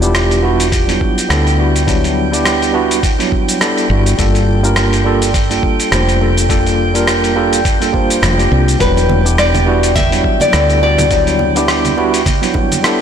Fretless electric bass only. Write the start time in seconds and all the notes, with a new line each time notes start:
Already playing: E1
1.30 D2
3.90 G1
4.19 G1
5.92 F1
8.22 F1
8.52 C2
8.80 E1
10.54 D2